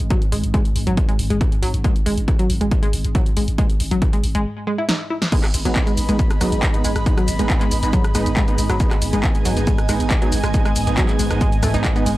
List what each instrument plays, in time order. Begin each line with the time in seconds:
Already playing: ambient pad G#2
0.00 808-style bass G#1, closed hi-hat
0.10 synth arpeggio sound F#3, kick, closed hi-hat
0.22 closed hi-hat
0.32 808-style bass G#1, synth arpeggio sound G#3, open hi-hat
0.43 808-style bass G#1, closed hi-hat
0.54 synth arpeggio sound G#3, kick, closed hi-hat
0.65 closed hi-hat
0.76 808-style bass G#1, open hi-hat
0.87 808-style bass G#1, synth arpeggio sound F#3, closed hi-hat
0.97 kick, closed hi-hat
1.09 synth arpeggio sound G#3, closed hi-hat
1.19 808-style bass G#1, open hi-hat
1.30 808-style bass G#1, synth arpeggio sound G#3, closed hi-hat
1.41 kick, closed hi-hat
1.52 closed hi-hat
1.63 808-style bass G#1, synth arpeggio sound F#3, open hi-hat
1.74 808-style bass G#1, closed hi-hat
1.84 synth arpeggio sound G#3, kick, closed hi-hat
1.96 closed hi-hat
2.06 808-style bass G#1, synth arpeggio sound G#3, open hi-hat
2.17 808-style bass G#1, closed hi-hat
2.28 kick, closed hi-hat
2.39 synth arpeggio sound F#3, closed hi-hat
2.50 808-style bass G#1, open hi-hat
2.61 808-style bass G#1, synth arpeggio sound G#3, closed hi-hat
2.71 kick, closed hi-hat
2.83 synth arpeggio sound G#3, closed hi-hat
2.93 808-style bass G#1, open hi-hat
3.04 808-style bass G#1, closed hi-hat
3.15 synth arpeggio sound F#3, kick, closed hi-hat
3.26 closed hi-hat
3.37 808-style bass G#1, synth arpeggio sound G#3, open hi-hat
3.48 808-style bass G#1, closed hi-hat
3.58 synth arpeggio sound G#3, kick, closed hi-hat
3.70 closed hi-hat
3.80 808-style bass G#1, open hi-hat
3.91 808-style bass G#1, synth arpeggio sound F#3, closed hi-hat
4.02 kick, closed hi-hat
4.13 synth arpeggio sound G#3, closed hi-hat
4.24 808-style bass G#1, open hi-hat
4.35 808-style bass G#1, synth arpeggio sound G#3, closed hi-hat
4.67 synth arpeggio sound G#3
4.78 synth arpeggio sound E4
4.89 synth arpeggio sound D#4, snare
5.11 synth arpeggio sound E4
5.22 snare
5.32 ambient pad G#2, synth stab G#3 B3 D#4, synth arpeggio sound G#3, analog synth pad B3, kick, closed hi-hat, crash, shaker
5.44 analog synth pad B5, cross-stick, clap, closed hi-hat, shaker
5.51 808-style bass G#1, analog synth pad G#4 D#5, open hi-hat, ride, shaker
5.65 808-style bass G#1, synth arpeggio sound F#3, synth stab G#3 B3 D#4, closed hi-hat, shaker
5.76 kick, clap, closed hi-hat, shaker
5.87 synth arpeggio sound G#3, closed hi-hat, shaker
5.97 808-style bass G#1, open hi-hat, ride, shaker
6.09 808-style bass G#1, synth stab G#3 B3 D#4, synth arpeggio sound G#3, closed hi-hat, shaker
6.19 kick, closed hi-hat, shaker
6.31 cross-stick, closed hi-hat, shaker
6.41 808-style bass G#1, synth arpeggio sound F#3, synth stab G#3 B3 D#4, cross-stick, open hi-hat, ride, shaker
6.52 808-style bass G#1, closed hi-hat, shaker
6.63 synth arpeggio sound G#3, kick, clap, closed hi-hat, shaker
6.74 synth stab G#3 B3 D#4, closed hi-hat, shaker
6.84 808-style bass G#1, synth arpeggio sound G#3, open hi-hat, ride, shaker
6.96 808-style bass G#1, cross-stick, closed hi-hat, shaker
7.06 synth stab G#3 B3 D#4, kick, closed hi-hat, shaker
7.17 synth arpeggio sound F#3, cross-stick, closed hi-hat, shaker
7.28 808-style bass G#1, open hi-hat, ride, shaker
7.39 808-style bass G#1, synth arpeggio sound G#3, synth stab G#3 B3 D#4, closed hi-hat, shaker
7.50 kick, clap, closed hi-hat, shaker
7.61 synth arpeggio sound G#3, clap, closed hi-hat, shaker
7.71 808-style bass G#1, open hi-hat, ride, shaker
7.83 808-style bass G#1, synth stab G#3 B3 D#4, closed hi-hat, shaker
7.93 synth arpeggio sound F#3, kick, closed hi-hat, shaker
8.04 cross-stick, closed hi-hat, shaker
8.15 808-style bass G#1, synth arpeggio sound G#3, synth stab G#3 B3 D#4, cross-stick, open hi-hat, ride, shaker
8.26 808-style bass G#1, closed hi-hat, shaker
8.37 synth arpeggio sound G#3, kick, clap, closed hi-hat, shaker
8.48 synth stab G#3 B3 D#4, closed hi-hat, shaker
8.58 808-style bass G#1, open hi-hat, ride, shaker
8.70 808-style bass G#1, synth arpeggio sound F#3, cross-stick, closed hi-hat, shaker
8.80 synth stab G#3 B3 D#4, kick, closed hi-hat, shaker
8.91 synth arpeggio sound G#3, analog synth pad G#5, cross-stick, clap, closed hi-hat, shaker
9.02 808-style bass G#1, open hi-hat, ride, shaker
9.13 808-style bass G#1, synth arpeggio sound G#3, synth stab G#3 B3 D#4, closed hi-hat, shaker
9.24 kick, clap, closed hi-hat, shaker
9.35 closed hi-hat, shaker
9.45 808-style bass G#1, synth arpeggio sound F#3, open hi-hat, ride, shaker
9.57 808-style bass G#1, synth stab G#3 B3 D#4, closed hi-hat, shaker
9.67 synth arpeggio sound G#3, kick, closed hi-hat, shaker
9.78 cross-stick, closed hi-hat, shaker
9.89 808-style bass G#1, synth arpeggio sound G#3, synth stab G#3 B3 D#4, cross-stick, open hi-hat, ride, shaker
10.00 808-style bass G#1, closed hi-hat, shaker
10.10 kick, clap, closed hi-hat, shaker
10.22 synth arpeggio sound F#3, synth stab G#3 B3 D#4, closed hi-hat, shaker
10.32 808-style bass G#1, open hi-hat, ride, shaker
10.44 808-style bass G#1, synth arpeggio sound G#3, cross-stick, closed hi-hat, shaker
10.54 synth stab G#3 B3 D#4, kick, closed hi-hat, shaker
10.65 synth arpeggio sound G#3, cross-stick, closed hi-hat, shaker
10.76 808-style bass G#1, open hi-hat, ride, shaker
10.87 808-style bass G#1, synth stab G#3 B3 D#4, closed hi-hat, shaker
10.97 synth arpeggio sound F#3, kick, clap, closed hi-hat, shaker
11.09 clap, closed hi-hat, shaker
11.19 808-style bass G#1, synth arpeggio sound G#3, open hi-hat, ride, shaker
11.30 808-style bass G#1, synth stab G#3 B3 D#4, cross-stick, closed hi-hat, shaker
11.41 synth arpeggio sound G#3, kick, closed hi-hat, shaker
11.52 closed hi-hat, shaker
11.63 808-style bass G#1, synth arpeggio sound A3, kick, cross-stick, open hi-hat, ride, shaker
11.74 808-style bass G#1, synth stab G#3 B3 D#4, synth arpeggio sound D#4, closed hi-hat, shaker
11.84 kick, clap, closed hi-hat, shaker
11.96 synth stab G#3 B3 D#4, synth arpeggio sound B3, closed hi-hat, shaker
12.06 808-style bass G#1, synth arpeggio sound G#3, open hi-hat, ride, shaker